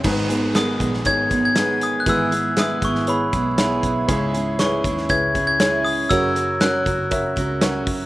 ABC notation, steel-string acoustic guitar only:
X:1
M:4/4
L:1/8
Q:1/4=119
K:G#m
V:1 name="Steel-string acoustic guitar"
[G,,D,G,B,DG] [G,B,DG] [G,B,DG] [G,B,DG]2 [G,B,DG] [G,B,DG]2 | [G,,E,G,B,EG] [G,B,EG] [G,B,EG] [G,B,EG]2 [G,B,EG] [G,B,EG]2 | [C,G,CEG] [CEG] [G,CEG] [CEG]2 [CEG] [G,CEG]2 | [F,CFA] [CFA] [F,CFA] [CFA]2 [CFA] [F,CFA]2 |]